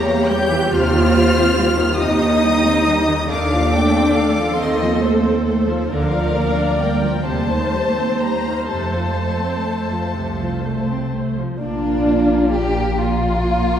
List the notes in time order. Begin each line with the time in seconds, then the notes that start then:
Already playing: E2 A#3 G4 C#5 A#5
0.08 A#3
0.28 G3 G4 G6
0.50 E3
0.71 D#2 C3 F4 C5 F6
0.92 D#3
1.14 G3
1.36 C4
1.56 G3
1.78 D#3
2.00 D#2 C3 D#4 D#5 D#6
2.21 D#3
2.43 G3
2.64 C4
2.86 G3
3.08 D#3
3.29 D#2 D#3 D4 A4 F5 D6
3.50 F3
3.73 A3 G5
3.95 C4
4.17 A3 F5
4.37 F3
4.58 D#2 D#3 C4 D#5 C6
4.81 F3
5.01 A3 C5
5.24 C4
5.46 A3 C5
5.68 F3
5.90 D2 D3 F3 A#4 D5 F5
6.12 F3
6.35 A#3
6.57 D4
6.80 G3 A#3 G5
7.03 F3
7.25 D#2 C3 A3 C5 A5
7.49 D#3
7.73 G3
7.97 C4
8.21 G3 A#3 A#5
8.46 D#3
8.69 F2 C3 A3 A4 A5
8.93 F3
9.17 A3
9.41 C4
9.66 A3
9.90 F3
10.14 C2 C3
10.40 F3
10.63 A3
10.88 C4
11.14 A3
11.38 F3
11.61 A#1 A#2 A#3 D4 F4 D5
12.54 G4
12.99 A#3 F4 D5